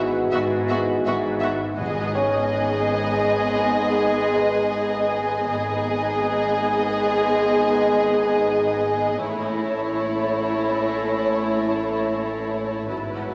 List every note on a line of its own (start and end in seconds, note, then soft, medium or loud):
0.00 0.24 G#1 medium
0.00 1.78 G#1 medium
0.00 0.24 G#2 medium
0.00 1.64 E3 medium
0.00 1.64 G#3 medium
0.00 1.62 B3 medium
0.00 1.76 E4 medium
0.00 1.62 F#4 medium
0.00 1.80 B4 medium
0.00 1.80 F#5 medium
0.31 0.98 G#1 medium
0.31 0.97 G#2 medium
0.31 0.40 B3 medium
0.31 0.42 F#4 medium
0.31 0.39 E5 medium
0.68 0.77 B3 medium
0.68 0.79 F#4 medium
0.68 0.76 E5 medium
1.06 1.71 G#1 medium
1.06 1.72 G#2 medium
1.06 1.15 B3 medium
1.06 1.15 F#4 medium
1.06 1.14 E5 medium
1.40 1.51 B3 medium
1.40 1.48 E5 medium
1.44 1.52 F#4 medium
1.79 5.46 G#1 medium
1.79 5.47 G#1 medium
1.79 2.87 G#2 medium
1.79 5.47 G#2 medium
1.79 5.47 D#3 medium
1.79 5.47 G#3 medium
1.79 5.46 B3 medium
1.79 5.47 B3 medium
1.79 5.50 D#4 medium
1.79 5.46 G#4 medium
1.79 5.47 B4 medium
1.79 5.46 D#5 medium
1.79 5.49 G#5 medium
2.15 4.35 C#4 medium
2.15 4.34 C#5 medium
4.37 6.57 B4 medium
5.48 9.17 G#1 medium
5.48 9.17 G#2 medium
5.48 9.03 D#3 medium
5.48 9.03 G#3 medium
5.48 9.07 B3 medium
5.48 9.17 B3 medium
5.48 9.17 D#4 medium
5.48 9.16 G#4 medium
5.48 9.07 G#4 medium
5.48 9.17 B4 medium
5.48 9.17 D#5 medium
5.48 9.17 G#5 medium
9.20 12.88 A1 medium
9.20 12.92 A1 medium
9.20 12.88 A2 medium
9.20 12.87 E3 medium
9.20 12.87 A3 medium
9.20 12.89 C#4 medium
9.20 12.88 E4 medium
9.20 12.91 C#5 medium
9.20 12.88 C#5 medium
9.20 12.92 A5 medium
9.24 12.89 E4 medium
10.69 12.87 C#4 soft
10.69 12.87 C#5 soft
12.90 13.34 G#1 medium
12.90 13.34 G#1 soft
12.90 12.97 G#2 soft
12.90 13.34 G#2 soft
12.90 13.34 E3 soft
12.90 13.34 F#3 soft
12.90 13.34 G#3 soft
12.90 13.34 B3 soft
12.90 13.34 E4 medium
12.90 13.34 E4 soft
12.90 13.34 F#4 soft
12.90 13.34 B4 soft
12.90 13.34 F#5 medium
12.98 13.05 G#2 soft
13.06 13.12 G#2 soft
13.13 13.20 G#2 soft
13.21 13.27 G#2 soft
13.28 13.34 G#2 soft